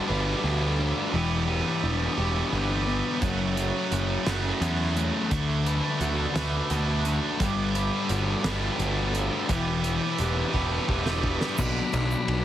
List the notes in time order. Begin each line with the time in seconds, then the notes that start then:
Already playing: G3 D4 F#4 G4
0.08 G1 G2 D3 G3 B3 D4 B4
0.44 D2 F#4
0.79 D4
1.11 E1 E2 B2 E3 G3 B3
1.15 G4
1.47 G4
1.83 E1 D4
2.15 E1 B2 E3 G3 B3 G4
2.20 E2
2.52 G1 D4
2.87 B3
3.20 F#1 F#2 C#3 F#3 A3 C#4 F#4, kick, closed hi-hat
3.56 F#4, closed hi-hat
3.92 F#1 C#4, closed hi-hat
4.24 F#1 C#3 F#3 A3 C#4 F#4, snare, closed hi-hat
4.28 F#2
4.61 E2 C#4, closed hi-hat
4.96 A3, closed hi-hat
5.31 D2 D3 A3 D4 F#4, kick, closed hi-hat
5.66 B4, closed hi-hat
6.00 D2 F#4, closed hi-hat
6.34 D2 A3 D4 F#4 B4, snare, closed hi-hat
6.38 D3
6.70 D2 F#4, closed hi-hat
7.05 D4, closed hi-hat
7.39 G1 G2 D3 G3 B3 D4 G4, kick, closed hi-hat
7.75 B4, closed hi-hat
8.09 G1 F#4, closed hi-hat
8.44 G1 G2 D3 G3 B3 D4 B4, snare, closed hi-hat
8.79 G1 F#4, closed hi-hat
9.14 D4, closed hi-hat
9.48 E1 E2 B2 E3 G3 B3 G4, kick, closed hi-hat
9.84 B4, closed hi-hat
10.19 E1 G4, closed hi-hat
10.53 E1 E2 B2 E3 G3 B3 G4 B4, kick
10.88 E1 G4, kick
11.06 snare
11.23 D4, kick
11.41 snare
11.58 B1 B2 F#3 B3 D4 F#4 B4 D5 B5, kick, crash, shaker
11.92 B1 B3 D4 F#4, ride, shaker
12.11 shaker
12.28 B1, ride